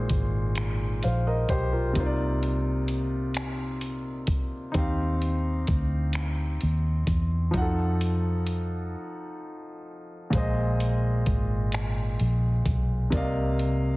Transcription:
Already playing: grand piano A#2 G#3 D#4 F#4 C5
0.10 fingered electric bass G#1, kick, closed hi-hat
0.55 finger snap, closed hi-hat
1.03 fingered electric bass A#1, grand piano C5 F5, closed hi-hat
1.27 grand piano A#4 D#5
1.49 fingered electric bass B1, grand piano G4 C5, kick, closed hi-hat
1.72 grand piano F4 A#4
1.93 fingered electric bass C2, grand piano C3 A#3 D#4, kick, closed hi-hat
1.98 grand piano F4 C5
2.06 grand piano D5
2.43 closed hi-hat
2.88 closed hi-hat
3.34 finger snap, closed hi-hat
3.81 closed hi-hat
4.27 fingered electric bass D2, kick, closed hi-hat
4.72 fingered electric bass D#2, grand piano C4 D#4, kick, closed hi-hat
4.76 grand piano G4 F5
5.22 closed hi-hat
5.67 fingered electric bass D2, kick, closed hi-hat
6.13 finger snap, closed hi-hat
6.61 fingered electric bass D#2, closed hi-hat
7.07 fingered electric bass E2, kick, closed hi-hat
7.51 fingered electric bass F2, grand piano F3 D#4, kick, closed hi-hat
7.55 grand piano F#4 F#5
7.62 grand piano A4
8.01 closed hi-hat
8.47 closed hi-hat
10.30 grand piano A#2 G#3, kick, closed hi-hat
10.35 fingered electric bass A#1, grand piano C5 D#5
10.80 closed hi-hat
11.26 fingered electric bass G#1, kick, closed hi-hat
11.72 finger snap, closed hi-hat
12.19 fingered electric bass A#1, closed hi-hat
12.66 fingered electric bass B1, kick, closed hi-hat
13.10 fingered electric bass C2, grand piano C3 A#3 D5, kick, closed hi-hat
13.15 grand piano D#5 F5
13.59 closed hi-hat

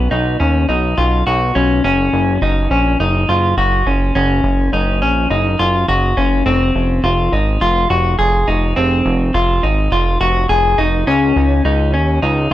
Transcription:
Already playing: clean electric guitar B3
0.11 analog synth bass B1, clean electric guitar D#4
0.40 analog synth bass D#2, clean electric guitar C#4
0.69 analog synth bass B1, clean electric guitar D#4
0.98 analog synth bass B1, clean electric guitar F4
1.27 analog synth bass B1, clean electric guitar F#4
1.55 analog synth bass B1, clean electric guitar C#4
1.84 analog synth bass F#1, clean electric guitar C#4
2.13 analog synth bass F#1
2.42 analog synth bass F#1, clean electric guitar D#4
2.71 analog synth bass A#1, clean electric guitar C#4
3.00 analog synth bass F#1, clean electric guitar D#4
3.29 analog synth bass F#1, clean electric guitar F4
3.57 analog synth bass F#1, clean electric guitar F#4
3.86 analog synth bass F#1, clean electric guitar C#4
4.15 analog synth bass F#1, clean electric guitar C#4
4.44 analog synth bass F#1
4.73 analog synth bass F#1, clean electric guitar D#4
5.01 analog synth bass A#1, clean electric guitar C#4
5.30 analog synth bass F#1, clean electric guitar D#4
5.59 analog synth bass F#1, clean electric guitar F4
5.88 analog synth bass F#1, clean electric guitar F#4
6.17 analog synth bass F#1, clean electric guitar C#4
6.46 analog synth bass F1, clean electric guitar C4
6.75 analog synth bass F1
7.03 analog synth bass F1, clean electric guitar F4
7.32 analog synth bass G#1, clean electric guitar D#4
7.61 analog synth bass F1, clean electric guitar F4
7.90 analog synth bass F1, clean electric guitar F#4
8.19 analog synth bass F1, clean electric guitar G#4
8.48 analog synth bass F1, clean electric guitar D#4
8.76 analog synth bass F1, clean electric guitar C4
9.06 analog synth bass F1
9.34 analog synth bass F1, clean electric guitar F4
9.63 analog synth bass G#1, clean electric guitar D#4
9.92 analog synth bass F1, clean electric guitar F4
10.21 analog synth bass F1, clean electric guitar F#4
10.49 analog synth bass F1, clean electric guitar G#4
10.78 analog synth bass F1, clean electric guitar D#4
11.07 analog synth bass C#2, clean electric guitar C#4
11.36 analog synth bass C#2
11.65 analog synth bass C#2, clean electric guitar D#4
11.94 analog synth bass D#2, clean electric guitar C#4
12.22 analog synth bass C#2, clean electric guitar D#4

